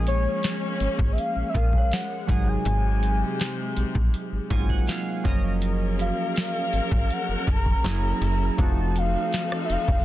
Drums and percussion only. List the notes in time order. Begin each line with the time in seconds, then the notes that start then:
0.07 closed hi-hat
0.43 snare, closed hi-hat
0.80 closed hi-hat
0.99 kick
1.18 closed hi-hat
1.55 kick, closed hi-hat
1.73 kick
1.92 snare, closed hi-hat
2.29 kick, closed hi-hat
2.65 closed hi-hat
3.03 closed hi-hat
3.40 snare, closed hi-hat
3.77 closed hi-hat
3.95 kick
4.14 closed hi-hat
4.50 kick, closed hi-hat
4.69 kick
4.87 snare, closed hi-hat
5.25 kick, closed hi-hat
5.62 closed hi-hat
5.99 closed hi-hat
6.36 snare, closed hi-hat
6.73 closed hi-hat
6.92 kick
7.10 closed hi-hat
7.47 kick, closed hi-hat
7.66 kick
7.84 snare, closed hi-hat
8.22 closed hi-hat
8.58 kick, closed hi-hat
8.96 closed hi-hat
9.33 snare, closed hi-hat
9.52 cross-stick
9.70 closed hi-hat
9.88 kick